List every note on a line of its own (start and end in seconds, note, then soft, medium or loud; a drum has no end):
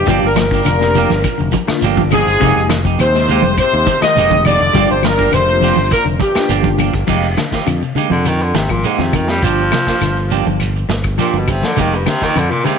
0.00 0.22 G2 medium
0.00 0.21 G4 medium
0.00 0.28 G4 medium
0.06 0.21 G1 loud
0.06 0.26 F3 medium
0.06 0.26 G3 medium
0.06 0.45 A#3 medium
0.06 0.26 A#3 medium
0.06 0.46 D4 medium
0.06 0.26 D4 medium
0.06 0.46 F4 medium
0.06 kick medium
0.06 closed hi-hat medium
0.06 shekere medium
0.10 0.26 G4 medium
0.23 0.64 G1 medium
0.23 0.38 A#4 medium
0.23 0.39 A#4 medium
0.23 shekere soft
0.27 0.39 A#2 medium
0.36 0.46 F3 medium
0.36 1.51 A#4 medium
0.36 muted clean electric guitar stroke soft
0.36 snare medium
0.36 closed hi-hat medium
0.36 high conga loud
0.36 claves medium
0.36 shekere medium
0.40 1.52 A#2 medium
0.40 1.51 A#4 medium
0.51 0.61 D3 medium
0.51 0.67 G4 medium
0.51 kick medium
0.51 snare soft
0.51 closed hi-hat soft
0.51 shekere soft
0.55 0.67 A#3 soft
0.55 0.67 D4 medium
0.65 1.07 F1 loud
0.65 0.75 D3 medium
0.65 muted clean electric guitar stroke soft
0.65 closed hi-hat medium
0.65 claves medium
0.65 shekere medium
0.80 0.89 F3 medium
0.80 1.26 A#3 medium
0.80 1.26 D4 medium
0.80 1.26 G4 medium
0.80 muted clean electric guitar stroke soft
0.80 snare soft
0.80 shekere soft
0.94 1.14 F3 medium
0.94 1.11 F3 medium
0.94 1.11 A#3 medium
0.94 1.10 G4 medium
0.94 closed hi-hat medium
0.94 low conga medium
0.94 shekere medium
1.10 1.24 G1 medium
1.10 muted clean electric guitar stroke soft
1.10 snare soft
1.10 high conga loud
1.10 shekere soft
1.24 kick medium
1.24 closed hi-hat medium
1.24 high conga medium
1.24 claves medium
1.24 shekere medium
1.38 1.53 F1 medium
1.38 1.48 D3 medium
1.38 muted clean electric guitar stroke medium
1.38 shekere soft
1.52 1.62 F3 medium
1.52 muted clean electric guitar stroke soft
1.52 kick medium
1.52 closed hi-hat medium
1.52 high conga medium
1.52 shekere medium
1.67 1.87 D3 medium
1.67 1.83 A#3 loud
1.67 1.83 D4 medium
1.67 1.83 F4 loud
1.67 muted fingered electric bass stroke soft
1.67 muted clean electric guitar stroke soft
1.67 snare medium
1.67 closed hi-hat medium
1.67 claves medium
1.67 shekere soft
1.82 2.24 G1 loud
1.82 2.01 F3 medium
1.82 2.01 A#3 medium
1.82 2.01 D4 medium
1.82 2.01 G4 medium
1.82 closed hi-hat medium
1.82 low conga medium
1.82 shekere medium
1.97 2.06 D#3 medium
1.97 2.20 A#3 medium
1.97 2.20 D4 medium
1.97 2.20 F4 medium
1.97 kick medium
1.97 high conga medium
1.97 shekere soft
2.11 2.66 G#2 loud
2.11 2.30 F3 medium
2.11 2.27 F3 medium
2.11 2.27 A#3 medium
2.11 2.27 D4 medium
2.11 2.27 G4 medium
2.11 2.66 G#4 loud
2.11 2.67 G#4 loud
2.11 closed hi-hat medium
2.11 high conga medium
2.11 low conga medium
2.11 claves medium
2.11 shekere medium
2.26 2.40 G1 medium
2.26 muted clean electric guitar stroke medium
2.26 closed hi-hat medium
2.26 shekere soft
2.40 2.55 F1 loud
2.40 2.59 C3 loud
2.40 2.79 G#3 medium
2.40 2.59 G#3 medium
2.40 2.79 A#3 medium
2.40 2.60 A#3 medium
2.40 2.79 D#4 medium
2.40 2.60 D#4 medium
2.40 2.79 G4 medium
2.40 2.60 G4 medium
2.40 kick medium
2.40 closed hi-hat medium
2.40 shekere medium
2.56 2.97 F1 medium
2.56 shekere soft
2.69 2.79 D#3 medium
2.69 muted clean electric guitar stroke soft
2.69 snare medium
2.69 closed hi-hat medium
2.69 high conga loud
2.69 claves medium
2.69 shekere medium
2.84 3.03 F3 medium
2.84 3.00 D#4 medium
2.84 3.00 G4 medium
2.84 kick medium
2.84 shekere soft
2.99 3.40 D#2 loud
2.99 3.54 C3 medium
2.99 3.54 C5 medium
2.99 3.55 C5 medium
2.99 muted clean electric guitar stroke soft
2.99 closed hi-hat medium
2.99 high conga medium
2.99 claves medium
2.99 shekere medium
3.14 3.59 G#3 medium
3.14 3.59 A#3 medium
3.14 3.59 D#4 medium
3.14 3.59 G4 medium
3.14 muted clean electric guitar stroke soft
3.14 snare soft
3.14 shekere soft
3.28 3.44 G#3 medium
3.28 3.44 A#3 medium
3.28 3.44 D#4 medium
3.28 3.43 G4 medium
3.28 closed hi-hat medium
3.28 low conga medium
3.28 shekere medium
3.42 3.57 F1 medium
3.42 3.62 G3 medium
3.42 muted clean electric guitar stroke soft
3.42 high conga medium
3.42 shekere soft
3.57 4.00 C3 medium
3.57 4.00 C5 loud
3.57 4.00 C5 medium
3.57 kick medium
3.57 closed hi-hat medium
3.57 claves medium
3.57 shekere medium
3.73 3.87 D#2 medium
3.73 muted clean electric guitar stroke soft
3.73 shekere soft
3.86 3.96 D#3 medium
3.86 muted clean electric guitar stroke soft
3.86 kick medium
3.86 snare soft
3.86 closed hi-hat medium
3.86 high conga medium
3.86 shekere medium
4.01 4.20 D#3 medium
4.01 4.44 D#3 medium
4.01 4.16 G#3 medium
4.01 4.16 A#3 medium
4.01 4.17 D#4 medium
4.01 4.17 G4 medium
4.01 4.43 D#5 loud
4.01 4.47 D#5 medium
4.01 muted fingered electric bass stroke soft
4.01 snare medium
4.01 closed hi-hat soft
4.01 claves medium
4.01 shekere soft
4.16 4.58 F1 loud
4.16 4.35 G#3 medium
4.16 4.35 A#3 medium
4.16 4.35 D#4 medium
4.16 4.35 G4 medium
4.16 closed hi-hat medium
4.16 low conga medium
4.16 shekere medium
4.30 4.40 D3 medium
4.30 4.53 G#3 medium
4.30 4.54 A#3 medium
4.30 4.54 D#4 medium
4.30 4.54 G4 medium
4.30 kick medium
4.30 high conga medium
4.30 shekere soft
4.45 4.90 D3 medium
4.45 4.55 D#3 medium
4.45 4.61 G#3 medium
4.45 4.60 A#3 medium
4.45 4.59 D#4 medium
4.45 4.59 G4 medium
4.45 4.90 D5 loud
4.45 closed hi-hat medium
4.45 high conga medium
4.45 low conga medium
4.45 claves medium
4.45 shekere medium
4.59 4.74 F1 medium
4.59 4.69 D#3 medium
4.59 muted clean electric guitar stroke medium
4.59 shekere soft
4.73 4.89 G1 loud
4.73 4.93 F3 medium
4.73 4.93 G3 loud
4.73 5.12 A#3 medium
4.73 4.93 A#3 medium
4.73 5.12 D4 medium
4.73 4.93 D4 medium
4.73 5.12 F4 loud
4.73 4.93 G4 medium
4.73 kick medium
4.73 closed hi-hat medium
4.73 shekere medium
4.90 5.31 G1 medium
4.90 5.03 C3 medium
4.90 5.03 C5 medium
4.90 5.06 C5 medium
4.90 shekere soft
5.03 5.33 A#2 medium
5.03 5.13 F3 medium
5.03 5.35 A#4 medium
5.03 5.34 A#4 loud
5.03 muted clean electric guitar stroke soft
5.03 snare medium
5.03 closed hi-hat medium
5.03 high conga loud
5.03 claves medium
5.03 shekere medium
5.18 5.27 D3 medium
5.18 5.33 A#3 soft
5.18 5.33 D4 soft
5.18 5.34 G4 medium
5.18 kick medium
5.18 closed hi-hat soft
5.18 shekere soft
5.31 5.74 F1 loud
5.31 5.91 C3 medium
5.31 5.42 D3 medium
5.31 5.92 C5 medium
5.31 5.92 C5 loud
5.31 muted clean electric guitar stroke soft
5.31 closed hi-hat medium
5.31 claves medium
5.31 shekere medium
5.47 5.93 A#3 medium
5.47 5.93 D4 medium
5.47 5.93 F4 medium
5.47 muted clean electric guitar stroke soft
5.47 shekere soft
5.61 5.80 F3 medium
5.61 5.77 F3 medium
5.61 5.77 A#3 medium
5.61 5.77 D4 medium
5.61 5.77 G4 medium
5.61 open hi-hat medium
5.61 low conga medium
5.61 shekere medium
5.76 5.91 G1 medium
5.76 muted clean electric guitar stroke soft
5.76 high conga loud
5.76 shekere soft
5.91 6.05 A#2 medium
5.91 6.05 A#4 medium
5.91 6.05 A#4 loud
5.91 kick medium
5.91 closed hi-hat medium
5.91 claves medium
5.91 shekere medium
6.05 6.19 F1 medium
6.05 6.15 D3 medium
6.05 muted clean electric guitar stroke soft
6.05 shekere soft
6.20 6.76 G2 medium
6.20 6.75 G4 medium
6.20 6.76 G4 medium
6.20 muted clean electric guitar stroke soft
6.20 kick medium
6.20 closed hi-hat medium
6.20 high conga loud
6.20 shekere medium
6.35 6.50 A#3 medium
6.35 6.51 D4 medium
6.35 6.51 F4 medium
6.35 muted fingered electric bass stroke soft
6.35 muted clean electric guitar stroke soft
6.35 snare medium
6.35 closed hi-hat medium
6.35 claves medium
6.35 shekere soft
6.49 6.91 G1 loud
6.49 6.68 F3 medium
6.49 6.68 A#3 medium
6.49 6.68 D4 medium
6.49 6.68 G4 medium
6.49 closed hi-hat medium
6.49 shekere medium
6.63 6.73 D#3 medium
6.63 6.88 A#3 medium
6.63 6.88 D4 medium
6.63 6.88 F4 medium
6.63 kick medium
6.63 high conga medium
6.63 shekere soft
6.78 6.98 F3 medium
6.78 6.94 F3 medium
6.78 6.94 A#3 medium
6.78 6.93 D4 medium
6.78 6.93 G4 medium
6.78 closed hi-hat medium
6.78 low conga medium
6.78 claves medium
6.78 shekere medium
6.94 7.07 G1 medium
6.94 muted clean electric guitar stroke medium
6.94 kick medium
6.94 closed hi-hat medium
6.94 shekere soft
7.07 7.36 F1 loud
7.07 7.27 F3 medium
7.07 7.26 G#3 medium
7.07 7.26 A#3 medium
7.07 7.26 D#4 medium
7.07 7.27 G4 loud
7.07 kick medium
7.07 crash medium
7.07 shekere medium
7.23 closed hi-hat soft
7.23 shekere soft
7.37 7.47 D3 medium
7.37 muted clean electric guitar stroke soft
7.37 snare medium
7.37 closed hi-hat medium
7.37 high conga medium
7.37 claves medium
7.37 shekere medium
7.51 7.61 D#3 medium
7.51 7.67 A#3 soft
7.51 7.67 D#4 soft
7.51 7.67 G4 medium
7.51 kick medium
7.51 snare medium
7.51 shekere soft
7.66 7.81 F2 medium
7.66 7.76 D3 medium
7.66 muted clean electric guitar stroke soft
7.66 closed hi-hat medium
7.66 claves medium
7.66 shekere medium
7.81 7.91 C3 medium
7.81 muted clean electric guitar stroke soft
7.81 shekere soft
7.95 8.06 D3 medium
7.95 8.12 G#3 medium
7.95 8.12 A#3 medium
7.95 8.11 D#4 medium
7.95 8.11 G4 medium
7.95 muted fingered electric bass stroke soft
7.95 closed hi-hat medium
7.95 low conga medium
7.95 shekere medium
8.10 8.52 F2 medium
8.10 8.20 C3 medium
8.10 8.28 D3 medium
8.10 muted clean electric guitar stroke soft
8.10 high conga medium
8.10 shekere soft
8.24 8.44 D3 medium
8.24 8.44 D#3 medium
8.24 closed hi-hat medium
8.24 claves medium
8.24 shekere medium
8.40 8.57 D3 medium
8.40 muted clean electric guitar stroke soft
8.40 closed hi-hat soft
8.40 shekere soft
8.54 8.82 G#1 medium
8.54 8.73 C3 medium
8.54 8.65 D#3 medium
8.54 snare medium
8.54 closed hi-hat soft
8.54 high conga medium
8.54 shekere medium
8.69 8.87 A#2 medium
8.69 8.89 F3 medium
8.69 muted clean electric guitar stroke soft
8.69 kick medium
8.69 claves medium
8.69 shekere soft
8.83 9.02 G#2 medium
8.83 9.02 G#3 medium
8.83 9.02 A#3 medium
8.83 9.02 D#4 medium
8.83 9.03 G4 medium
8.83 closed hi-hat medium
8.83 shekere medium
8.98 9.40 F2 medium
8.98 9.16 C3 medium
8.98 9.08 D#3 medium
8.98 snare soft
8.98 high conga medium
8.98 shekere soft
9.13 9.23 D#3 medium
9.13 9.31 D#3 medium
9.13 muted clean electric guitar stroke soft
9.13 kick medium
9.13 closed hi-hat medium
9.13 high conga medium
9.13 low conga medium
9.13 claves medium
9.13 shekere medium
9.27 9.47 F3 medium
9.27 9.45 G3 medium
9.27 muted clean electric guitar stroke soft
9.27 snare medium
9.27 shekere soft
9.42 9.70 G1 loud
9.42 10.61 F3 medium
9.42 9.61 F3 medium
9.42 9.62 D4 medium
9.42 9.62 G4 medium
9.42 muted clean electric guitar stroke medium
9.42 kick medium
9.42 closed hi-hat medium
9.42 shekere medium
9.59 shekere soft
9.71 9.91 C3 medium
9.71 muted clean electric guitar stroke soft
9.71 snare medium
9.71 closed hi-hat medium
9.71 high conga medium
9.71 claves medium
9.71 shekere medium
9.87 10.01 A#3 soft
9.87 10.02 D4 soft
9.87 10.02 G4 soft
9.87 muted fingered electric bass stroke soft
9.87 kick medium
9.87 snare medium
9.87 closed hi-hat soft
9.87 shekere soft
10.01 10.43 G1 medium
10.01 10.21 D3 medium
10.01 muted clean electric guitar stroke soft
10.01 snare soft
10.01 closed hi-hat medium
10.01 claves medium
10.01 shekere medium
10.16 muted clean electric guitar stroke soft
10.16 closed hi-hat soft
10.16 shekere soft
10.30 10.46 F3 medium
10.30 10.46 A#3 medium
10.30 10.46 D4 medium
10.30 10.46 G4 loud
10.30 closed hi-hat medium
10.30 low conga medium
10.30 shekere medium
10.45 10.87 G1 medium
10.45 10.65 F3 medium
10.45 muted clean electric guitar stroke medium
10.45 high conga medium
10.45 shekere soft
10.60 closed hi-hat medium
10.60 high conga medium
10.60 claves medium
10.60 shekere medium
10.76 muted clean electric guitar stroke soft
10.76 shekere soft
10.89 11.17 G1 medium
10.89 muted clean electric guitar stroke medium
10.89 snare medium
10.89 closed hi-hat medium
10.89 high conga medium
10.89 shekere medium
11.04 muted clean electric guitar stroke soft
11.04 kick medium
11.04 closed hi-hat soft
11.04 claves medium
11.04 shekere soft
11.18 11.39 A#2 medium
11.18 11.37 F3 medium
11.18 11.37 A#3 medium
11.18 11.37 D4 medium
11.18 11.37 G4 medium
11.18 closed hi-hat medium
11.18 shekere medium
11.34 11.61 G1 medium
11.34 11.52 B2 medium
11.34 high conga medium
11.34 shekere soft
11.48 11.67 C3 medium
11.48 muted clean electric guitar stroke soft
11.48 kick medium
11.48 closed hi-hat medium
11.48 low conga medium
11.48 claves medium
11.48 shekere medium
11.62 11.81 D3 medium
11.62 11.72 F3 medium
11.62 muted clean electric guitar stroke soft
11.62 snare medium
11.62 closed hi-hat soft
11.62 shekere soft
11.76 12.05 F1 loud
11.76 11.96 D#3 medium
11.76 11.96 F3 medium
11.76 11.96 G#3 medium
11.76 11.96 A#3 medium
11.76 11.96 D#4 medium
11.76 11.96 G4 medium
11.76 kick medium
11.76 closed hi-hat medium
11.76 shekere medium
11.92 12.10 G2 medium
11.92 closed hi-hat soft
11.92 shekere soft
12.06 12.25 C3 medium
12.06 12.16 D3 medium
12.06 muted clean electric guitar stroke soft
12.06 snare medium
12.06 closed hi-hat medium
12.06 high conga medium
12.06 claves medium
12.06 shekere medium
12.21 12.31 D#3 medium
12.21 12.39 D#3 loud
12.21 12.36 A#3 soft
12.21 12.35 D#4 soft
12.21 12.36 G4 soft
12.21 kick medium
12.21 snare medium
12.21 shekere soft
12.35 12.50 F2 medium
12.35 12.45 D3 medium
12.35 12.52 D3 medium
12.35 muted clean electric guitar stroke soft
12.35 closed hi-hat medium
12.35 claves medium
12.35 shekere medium
12.50 12.66 A#2 medium
12.50 12.60 C3 medium
12.50 muted clean electric guitar stroke soft
12.50 shekere soft
12.64 12.79 C3 medium
12.64 12.74 D3 medium
12.64 12.79 G#3 medium
12.64 12.79 A#3 medium
12.64 12.79 D#4 medium
12.64 12.79 G4 medium
12.64 muted fingered electric bass stroke soft
12.64 closed hi-hat medium
12.64 low conga medium
12.64 shekere medium